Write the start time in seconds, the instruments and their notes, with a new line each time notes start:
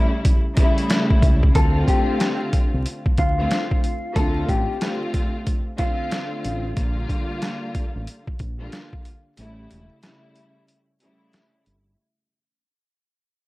Already playing: string section C#3 G3 A3 E4
0.25 kick, closed hi-hat
0.57 string section C#3 G3 A3 E4, kick, closed hi-hat
0.78 closed hi-hat
0.90 snare, closed hi-hat
1.10 kick
1.22 fingered electric bass C#2, kick, closed hi-hat
1.43 kick
1.53 fingered electric bass D2, string section D3 A3 C4 F4, clean electric guitar A4, kick, closed hi-hat
1.88 clean electric guitar G4, kick, closed hi-hat
2.20 snare, closed hi-hat
2.53 kick, closed hi-hat
2.74 fingered electric bass C2
2.86 closed hi-hat
3.06 muted fingered electric bass stroke, kick
3.17 fingered electric bass D2, clean electric guitar F4, kick, closed hi-hat
3.38 string section D3 A3 C4 F4
3.51 snare, closed hi-hat
3.71 kick
3.84 closed hi-hat
4.14 fingered electric bass D2, string section D3 A3 C4 F4, clean electric guitar A4, kick, closed hi-hat
4.49 fingered electric bass A1, clean electric guitar G4, kick, closed hi-hat
4.81 string section D3 A3 C4 F4, snare, closed hi-hat
5.14 kick, closed hi-hat
5.47 kick, closed hi-hat
5.78 string section D3 A3 C4 F4, clean electric guitar F4, kick, closed hi-hat
6.11 snare, closed hi-hat
6.45 fingered electric bass A1, closed hi-hat
6.76 fingered electric bass A#1, string section D3 G3 A#3 F4, kick, closed hi-hat
7.09 kick, closed hi-hat
7.42 snare, closed hi-hat
7.75 kick, closed hi-hat
7.96 fingered electric bass A1
8.07 closed hi-hat
8.27 muted fingered electric bass stroke, kick
8.39 fingered electric bass A#1, kick, closed hi-hat
8.59 string section D3 G3 A#3 F4
8.72 snare, closed hi-hat
8.93 kick
9.05 closed hi-hat
9.37 fingered electric bass A1, string section C#3 G3 A3 E4, closed hi-hat
9.71 fingered electric bass E1, closed hi-hat
10.02 string section C#3 G3 A3 E4, snare, closed hi-hat
10.36 closed hi-hat
10.68 closed hi-hat
11.00 string section C#3 G3 A3 E4, closed hi-hat
11.33 snare, closed hi-hat
11.66 fingered electric bass G1, closed hi-hat